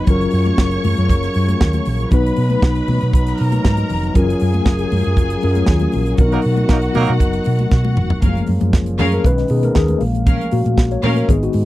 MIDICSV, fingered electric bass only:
0, 0, Header, 1, 2, 480
1, 0, Start_track
1, 0, Key_signature, 6, "major"
1, 0, Tempo, 509771
1, 73, Time_signature, 4, 2, 24, 8
1, 10970, End_track
2, 0, Start_track
2, 0, Title_t, "Fingered electric bass"
2, 0, Program_c, 0, 33
2, 74, Note_on_c, 0, 30, 96
2, 240, Note_off_c, 0, 30, 0
2, 314, Note_on_c, 0, 42, 100
2, 480, Note_off_c, 0, 42, 0
2, 552, Note_on_c, 0, 30, 85
2, 719, Note_off_c, 0, 30, 0
2, 796, Note_on_c, 0, 42, 84
2, 883, Note_off_c, 0, 42, 0
2, 926, Note_on_c, 0, 42, 100
2, 1033, Note_on_c, 0, 30, 90
2, 1047, Note_off_c, 0, 42, 0
2, 1199, Note_off_c, 0, 30, 0
2, 1278, Note_on_c, 0, 42, 93
2, 1443, Note_off_c, 0, 42, 0
2, 1519, Note_on_c, 0, 39, 86
2, 1683, Note_off_c, 0, 39, 0
2, 1759, Note_on_c, 0, 34, 89
2, 1923, Note_off_c, 0, 34, 0
2, 1996, Note_on_c, 0, 35, 107
2, 2161, Note_off_c, 0, 35, 0
2, 2237, Note_on_c, 0, 47, 90
2, 2402, Note_off_c, 0, 47, 0
2, 2472, Note_on_c, 0, 35, 88
2, 2638, Note_off_c, 0, 35, 0
2, 2720, Note_on_c, 0, 47, 97
2, 2805, Note_off_c, 0, 47, 0
2, 2850, Note_on_c, 0, 47, 105
2, 2924, Note_off_c, 0, 47, 0
2, 2955, Note_on_c, 0, 35, 105
2, 3120, Note_off_c, 0, 35, 0
2, 3209, Note_on_c, 0, 47, 88
2, 3369, Note_off_c, 0, 47, 0
2, 3439, Note_on_c, 0, 44, 85
2, 3603, Note_off_c, 0, 44, 0
2, 3688, Note_on_c, 0, 29, 92
2, 3848, Note_off_c, 0, 29, 0
2, 3915, Note_on_c, 0, 30, 115
2, 4079, Note_off_c, 0, 30, 0
2, 4161, Note_on_c, 0, 42, 97
2, 4323, Note_off_c, 0, 42, 0
2, 4388, Note_on_c, 0, 30, 86
2, 4555, Note_off_c, 0, 30, 0
2, 4636, Note_on_c, 0, 42, 97
2, 4722, Note_off_c, 0, 42, 0
2, 4771, Note_on_c, 0, 42, 106
2, 4870, Note_on_c, 0, 30, 97
2, 4884, Note_off_c, 0, 42, 0
2, 5036, Note_off_c, 0, 30, 0
2, 5122, Note_on_c, 0, 42, 94
2, 5284, Note_off_c, 0, 42, 0
2, 5351, Note_on_c, 0, 39, 89
2, 5516, Note_off_c, 0, 39, 0
2, 5601, Note_on_c, 0, 34, 94
2, 5763, Note_off_c, 0, 34, 0
2, 5826, Note_on_c, 0, 35, 111
2, 5993, Note_off_c, 0, 35, 0
2, 6079, Note_on_c, 0, 47, 91
2, 6242, Note_off_c, 0, 47, 0
2, 6306, Note_on_c, 0, 35, 81
2, 6473, Note_off_c, 0, 35, 0
2, 6554, Note_on_c, 0, 47, 84
2, 6641, Note_off_c, 0, 47, 0
2, 6682, Note_on_c, 0, 47, 94
2, 6758, Note_off_c, 0, 47, 0
2, 6784, Note_on_c, 0, 30, 83
2, 6952, Note_off_c, 0, 30, 0
2, 7033, Note_on_c, 0, 47, 90
2, 7198, Note_off_c, 0, 47, 0
2, 7269, Note_on_c, 0, 47, 98
2, 7513, Note_on_c, 0, 29, 76
2, 7527, Note_off_c, 0, 47, 0
2, 7678, Note_off_c, 0, 29, 0
2, 7750, Note_on_c, 0, 30, 102
2, 7916, Note_off_c, 0, 30, 0
2, 7989, Note_on_c, 0, 42, 84
2, 8077, Note_off_c, 0, 42, 0
2, 8116, Note_on_c, 0, 42, 91
2, 8226, Note_on_c, 0, 30, 80
2, 8241, Note_off_c, 0, 42, 0
2, 8473, Note_on_c, 0, 42, 90
2, 8487, Note_off_c, 0, 30, 0
2, 8638, Note_off_c, 0, 42, 0
2, 8706, Note_on_c, 0, 35, 104
2, 8874, Note_off_c, 0, 35, 0
2, 8949, Note_on_c, 0, 47, 91
2, 9115, Note_off_c, 0, 47, 0
2, 9193, Note_on_c, 0, 39, 85
2, 9359, Note_off_c, 0, 39, 0
2, 9426, Note_on_c, 0, 34, 91
2, 9760, Note_off_c, 0, 34, 0
2, 9912, Note_on_c, 0, 46, 92
2, 10000, Note_off_c, 0, 46, 0
2, 10037, Note_on_c, 0, 46, 88
2, 10115, Note_off_c, 0, 46, 0
2, 10149, Note_on_c, 0, 34, 97
2, 10316, Note_off_c, 0, 34, 0
2, 10386, Note_on_c, 0, 46, 95
2, 10554, Note_off_c, 0, 46, 0
2, 10631, Note_on_c, 0, 32, 99
2, 10797, Note_off_c, 0, 32, 0
2, 10870, Note_on_c, 0, 44, 86
2, 10970, Note_off_c, 0, 44, 0
2, 10970, End_track
0, 0, End_of_file